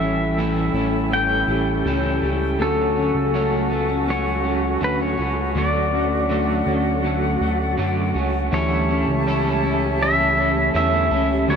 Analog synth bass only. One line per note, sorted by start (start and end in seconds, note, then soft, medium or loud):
0.00 0.70 A1 medium
0.74 1.44 A1 medium
1.48 1.83 A1 loud
1.85 2.21 C#2 loud
2.23 2.58 C#2 medium
2.59 3.12 D2 medium
3.15 4.78 C#2 medium
4.81 5.17 D2 medium
5.19 5.54 C#2 medium
5.55 6.63 D2 medium
6.67 7.37 D2 medium
7.41 7.76 D2 medium
7.78 8.13 F#2 medium
8.15 8.50 C#2 medium
8.52 9.05 D2 medium
9.08 10.71 C#2 medium
10.75 11.10 E2 medium
11.11 11.47 C#2 medium
11.48 11.56 D2 medium